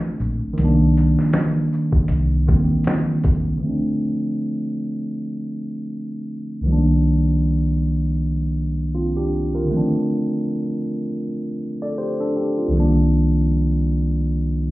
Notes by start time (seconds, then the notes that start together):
Already playing: D3 F3 A3 C4 D4
0.20 A#1, tambourine, shaker
0.53 D#3 F3
0.58 C2 G3, closed hi-hat
0.62 A#3 D4
0.95 closed hi-hat, tambourine, shaker
1.19 snare
1.33 snare, closed hi-hat
1.73 tambourine, shaker
1.92 kick
2.08 C2, closed hi-hat
2.46 D#3 F3 G3, kick, tambourine, shaker
2.51 A#3 C4
2.84 snare, closed hi-hat
3.24 kick, closed hi-hat, tambourine, shaker
3.57 D3 F3
3.63 A3 C4
3.69 D4
6.61 C2 D#3
6.66 F3 G3
6.70 A#3 D4
8.95 C4 F4
9.17 D4 G4
9.55 F4 A#4
9.65 D3 D#3
9.71 F3 A3 C4
9.76 D4
11.82 A4 D5
11.98 G4 C5
12.20 D4 A4
12.36 D4 G4
12.58 C4 F4
12.68 C2 D#3
12.73 F3 G3
12.77 A#3 D4